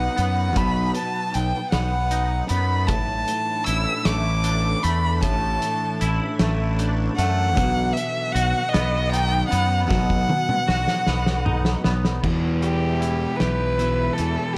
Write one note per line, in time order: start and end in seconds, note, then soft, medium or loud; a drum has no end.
0.00 0.17 B2 medium
0.00 2.87 F#3 medium
0.00 0.15 B3 medium
0.00 1.73 D#4 medium
0.00 2.87 D#4 medium
0.00 0.95 F#4 medium
0.00 2.87 B4 medium
0.00 0.58 F#5 medium
0.16 0.56 F#2 medium
0.16 1.71 B3 medium
0.16 closed hi-hat medium
0.56 0.90 B1 medium
0.56 2.51 B2 medium
0.56 0.95 B5 medium
0.56 kick loud
0.56 closed hi-hat medium
0.95 1.36 A5 medium
0.95 closed hi-hat medium
1.34 1.52 B1 medium
1.34 1.70 G5 medium
1.34 closed hi-hat medium
1.71 2.41 B1 medium
1.71 2.49 B3 medium
1.71 2.46 F#5 medium
1.71 snare medium
1.71 closed hi-hat medium
2.11 2.90 D#4 medium
2.11 closed hi-hat medium
2.49 2.89 F#2 medium
2.49 2.90 B3 medium
2.49 2.88 B5 medium
2.49 closed hi-hat medium
2.87 3.23 A1 medium
2.87 4.84 A2 medium
2.87 7.53 E3 medium
2.87 7.53 D4 medium
2.87 7.53 A4 medium
2.87 3.66 A5 medium
2.87 kick medium
2.87 closed hi-hat medium
3.28 closed hi-hat medium
3.64 3.85 A1 medium
3.64 5.62 E4 medium
3.64 4.06 E6 medium
3.64 closed hi-hat medium
4.05 4.74 A1 medium
4.05 4.83 A3 medium
4.05 4.85 D6 medium
4.05 snare loud
4.05 closed hi-hat medium
4.44 6.39 D4 medium
4.44 closed hi-hat medium
4.83 5.23 E2 medium
4.83 6.39 A3 medium
4.83 5.23 B5 medium
4.83 closed hi-hat medium
5.21 5.57 A1 medium
5.21 7.18 A2 medium
5.21 6.10 A5 medium
5.21 kick loud
5.21 closed hi-hat medium
5.62 closed hi-hat medium
6.01 6.19 A1 medium
6.01 7.57 E4 medium
6.01 closed hi-hat medium
6.39 7.08 A1 medium
6.39 7.17 A3 medium
6.39 snare medium
6.39 closed hi-hat medium
6.79 7.57 D4 medium
6.79 closed hi-hat medium
7.16 7.58 F#2 medium
7.16 7.57 A3 medium
7.16 7.95 F#5 medium
7.16 closed hi-hat medium
7.55 7.91 B1 loud
7.55 9.52 B2 medium
7.55 12.19 D#3 medium
7.55 12.19 F#3 medium
7.55 9.87 B4 medium
7.55 kick medium
7.55 closed hi-hat medium
7.93 8.33 E5 medium
7.93 closed hi-hat medium
8.32 8.52 B1 medium
8.32 10.29 F#4 medium
8.32 8.70 F#5 medium
8.32 closed hi-hat medium
8.69 9.11 D#5 medium
8.73 9.42 B1 loud
8.73 9.49 B3 medium
8.73 snare loud
8.73 closed hi-hat medium
9.09 11.07 D#4 medium
9.09 9.47 G5 loud
9.13 closed hi-hat medium
9.48 11.06 B3 medium
9.48 9.85 F#5 medium
9.52 9.91 F#2 medium
9.52 closed hi-hat medium
9.85 11.84 B2 medium
9.85 11.78 F#5 loud
9.91 10.25 B1 loud
9.91 12.22 A4 medium
9.91 kick loud
9.91 snare medium
10.10 kick medium
10.29 high tom medium
10.49 mid tom medium
10.68 10.86 B1 medium
10.68 12.24 F#4 medium
10.68 snare medium
10.88 snare medium
11.07 11.75 B1 medium
11.07 11.83 B3 medium
11.07 snare medium
11.26 snare medium
11.45 12.24 D#4 medium
11.45 mid tom medium
11.65 snare medium
11.84 12.19 B1 medium
11.84 12.24 B3 medium
11.84 snare medium
12.05 snare medium
12.23 13.77 E2 medium
12.23 14.18 E2 medium
12.23 13.25 E2 medium
12.23 13.77 B2 medium
12.23 13.78 E3 medium
12.23 14.58 G4 medium
12.23 14.55 E5 medium
12.23 14.58 B5 medium
12.23 kick medium
12.23 crash medium
12.62 14.58 G3 soft
12.62 13.38 G4 medium
12.62 closed hi-hat soft
13.00 13.77 E4 medium
13.00 closed hi-hat medium
13.37 14.15 B4 medium
13.37 snare medium
13.37 closed hi-hat medium
13.41 14.09 B1 medium
13.41 14.58 G4 medium
13.78 14.55 E2 medium
13.78 14.55 B2 medium
13.78 14.56 E3 medium
13.78 14.58 E4 medium
13.78 closed hi-hat medium
14.13 14.55 A4 medium
14.18 14.36 E2 medium
14.18 14.58 E3 medium
14.18 closed hi-hat soft
14.53 14.58 G4 medium